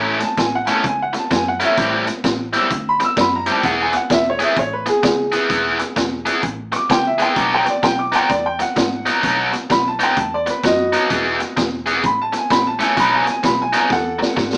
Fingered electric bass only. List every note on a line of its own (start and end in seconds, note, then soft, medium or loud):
0.00 0.22 A1 medium
0.38 0.69 A1 medium
0.84 1.15 C#2 medium
1.31 1.62 F#2 medium
1.78 2.08 A1 medium
2.24 2.55 A1 medium
2.70 3.01 D2 medium
3.17 3.48 F#2 medium
3.63 3.94 E1 medium
4.10 4.41 E1 medium
4.57 4.88 A1 medium
5.03 5.34 C#2 medium
5.50 5.81 E1 medium
5.96 6.28 E1 medium
6.43 6.74 A1 medium
6.90 7.21 C#2 medium
7.36 7.68 B1 medium
7.83 8.14 B1 medium
8.30 8.61 E2 medium
8.76 9.07 G#2 medium
9.23 9.54 B1 medium
9.70 10.01 B1 medium
10.17 10.48 E2 medium
10.63 10.94 F#2 medium
11.10 11.41 E1 medium
11.57 12.04 E1 medium
12.04 12.35 A1 medium
12.50 12.81 A#1 medium
12.97 13.28 B1 medium
13.44 13.75 B1 medium
13.90 14.21 E2 medium
14.37 14.57 G#2 medium